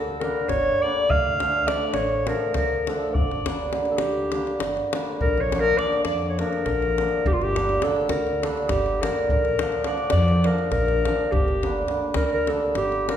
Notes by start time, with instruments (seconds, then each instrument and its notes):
Already playing: upright bass D2, hammered dulcimer D3 G3, clarinet A4
0.20 hammered dulcimer D3 G3, clarinet A#4, davul high
0.24 hammered dulcimer A#3 D4
0.48 upright bass G1, clarinet C#5, davul high, davul low
0.82 hammered dulcimer D3 G3 A#3 D4, clarinet D5
1.09 upright bass D2, clarinet F5, davul low
1.40 hammered dulcimer D3 F3 A3 D4, davul high
1.67 hammered dulcimer D3 F3 A3 D4, clarinet D5, davul high
1.94 upright bass A1, clarinet C#5, davul high
2.27 hammered dulcimer D3 F3 A3 D4, clarinet A#4, davul high
2.54 upright bass D2, clarinet A#4, davul high, davul low
2.87 hammered dulcimer D3 F3 A3 D4, clarinet A4, davul high
3.14 upright bass G1, clarinet D5, davul low
3.31 davul high
3.46 hammered dulcimer D3 G3 A#3 D4, davul high
3.73 hammered dulcimer D3 G3 A#3 D4, davul high
3.85 davul high
3.91 clarinet A4
3.97 upright bass D2, clarinet G4, davul high
4.32 hammered dulcimer D3 G3 A#3 D4, davul high
4.47 davul high
4.59 upright bass G1, davul high
4.77 davul high
4.92 hammered dulcimer D3 G3 A#3 D4, davul high
5.21 upright bass A#1, clarinet A#4, davul low
5.38 clarinet C#5, davul high
5.52 hammered dulcimer D3 F3 A#3 D4, davul high
5.60 clarinet A#4
5.66 davul high
5.78 hammered dulcimer D3 F3 A#3 D4, clarinet D5, davul high
5.93 davul high
6.04 upright bass F2, clarinet D5, davul high
6.22 davul high
6.29 clarinet C#5
6.39 hammered dulcimer D3 F3 A#3 D4, clarinet A#4, davul high
6.53 davul high
6.65 upright bass A#1, clarinet A#4, davul high, davul low
6.82 davul high
6.98 hammered dulcimer D3 F3 A#3 D4, davul high
7.25 upright bass G1, clarinet G4, davul low
7.33 clarinet F4
7.41 clarinet G4, davul high
7.56 hammered dulcimer D3 G3 A#3 D4, davul high
7.69 davul high
7.82 hammered dulcimer D3 G3 A#3 D4, clarinet A4, davul high
7.96 davul high
8.09 upright bass D2, clarinet A#4, davul high
8.27 davul high
8.42 hammered dulcimer D3 G3 A#3 D4, clarinet A4, davul high
8.57 davul high
8.69 upright bass G1, clarinet G4, davul high, davul low
8.86 davul high
9.02 hammered dulcimer D3 G3 A#3 D4, clarinet A#4, davul high
9.29 upright bass A#1, clarinet A#4, davul low
9.45 davul high
9.59 hammered dulcimer D3 F3 A#3 D4, davul high
9.72 davul high
9.84 hammered dulcimer D3 F3 A#3 D4, clarinet D5, davul high
9.98 davul high
10.10 upright bass F2, clarinet D5, davul high
10.28 davul high
10.44 hammered dulcimer D3 F3 A#3 D4, clarinet A#4, davul high
10.59 davul high
10.71 upright bass A#1, clarinet A#4, davul high, davul low
10.88 davul high
11.04 hammered dulcimer D3 F3 A#3 D4, davul high
11.32 upright bass G1, clarinet G4, davul low
11.48 davul high
11.63 hammered dulcimer D3 G3 A#3 D4, davul high
11.88 hammered dulcimer D3 G3 A#3 D4, davul high
12.14 upright bass D2, clarinet A#4, davul high
12.26 clarinet A#4
12.30 clarinet A#4, davul high
12.47 hammered dulcimer D3 G3 A#3 D4, clarinet A4, davul high
12.75 upright bass G1, clarinet G4, davul high
12.92 davul high
13.09 hammered dulcimer D3 G3 A#3 D4, clarinet A#4, davul high